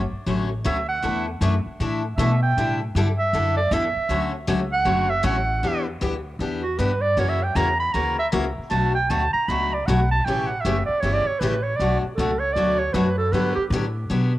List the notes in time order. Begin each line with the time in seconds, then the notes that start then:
Already playing: G1
0.12 muted upright bass stroke
0.26 A1 D3 F#3 A3 C#4 F#4
0.64 D2 D3 F#3 A3 C#4 F#4 E5
0.88 F#5
1.02 E2 E3 A3 D4 E4 A4
1.41 F#2 E3 A3 D4 E4 A4
1.66 muted upright bass stroke
1.80 A2 E3 A3 D4 E4 A4
2.17 B2 E3 A3 D4 E4 A4 E5
2.42 G5
2.57 A2 D3 G3 D4 E4 A4
2.95 G2 D3 G3 D4 E4 A4
3.18 E5
3.33 F#2 D3 G3 D4 E4 A4
3.57 D5
3.71 E2 D3 G3 D4 E4 A4 E5
3.96 muted upright bass stroke
4.09 D2 D3 F#3 A3 C#4 F#4
4.47 C#2 D3 F#3 A3 C#4 F#4
4.73 F#5
4.85 F#1 D3 F#3 A3 C#4 F#4
5.10 E5
5.23 A1 D3 F#3 A3 C#4 F#4 F#5
5.63 E2 E3 B3 D4 G4
6.01 D2 E3 B3 D4 G4
6.39 E2 E3 B3 D4 G4
6.63 F#4
6.79 G2 E3 B3 D4 G4 B4
7.01 D5
7.17 F#2 C#3 E3 A#3 C#4 F#4 C#5
7.29 E5
7.43 G5
7.55 E2 C#3 E3 A#3 C#4 F#4 A#5
7.80 B5
7.93 D2 C#3 E3 A#3 C#4 F#4 A#5
8.19 E5
8.32 C#2 C#3 E3 A#3 C#4 F#4
8.58 muted upright bass stroke
8.70 B1 B2 F#3 A3 D4 F#4 A5
8.95 G5
9.10 D2 B2 F#3 A3 D4 F#4 A5
9.33 A#5, muted upright bass stroke
9.48 C#2 B2 F#3 A3 D4 F#4 B5
9.73 D5
9.86 B1 B2 F#3 A3 D4 F#4 F#5
10.11 A5
10.24 A1 C#3 E3 A3 C#4 G4 G5
10.47 F#5
10.61 F#1 E5
10.65 C#3 E3 A3 C#4 G4
10.86 D5, muted upright bass stroke
11.00 G1 C#3 E3 A3 C#4 G4 C#5
11.13 D5
11.26 C#5, muted upright bass stroke
11.39 A1 C#3 E3 A3 C#4 G4 B4
11.63 C#5
11.76 B1 D5
11.80 B2 F#3 A3 D4 F#4
12.00 F#4, muted upright bass stroke
12.15 C#2 A4
12.19 B2 F#3 A3 D4 F#4
12.39 C#5
12.53 D2 B2 F#3 D5
12.57 A3 D4 F#4
12.79 C#5
12.93 F#2 B2 F#3 A3 D4 F#4 B4
13.18 A4
13.32 G2 D3 F#3 B3 D4 G4 B4
13.55 G4, muted upright bass stroke
13.70 A2 D3 F#3 B3 D4 G4
14.09 B2 D3 F#3 B3 D4 G4